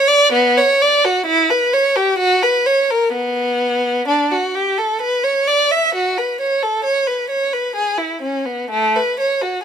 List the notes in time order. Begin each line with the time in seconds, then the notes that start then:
0.08 D5
0.32 B3
0.58 C#5
0.82 D5
1.05 F#4
1.26 E4
1.50 B4
1.73 C#5
1.96 G4
2.18 F#4
2.43 B4
2.66 C#5
2.90 A#4
3.12 B3
4.08 D4
4.31 F#4
4.55 G4
4.78 A4
5.01 B4
5.24 C#5
5.48 D5
5.71 E5
5.94 F#4
6.18 B4
6.40 C#5
6.63 A4
6.84 C#5
7.07 B4
7.30 C#5
7.53 B4
7.75 G#4
7.98 E4
8.22 C#4
8.45 B3
8.70 A3
8.96 B4
9.20 C#5
9.42 F#4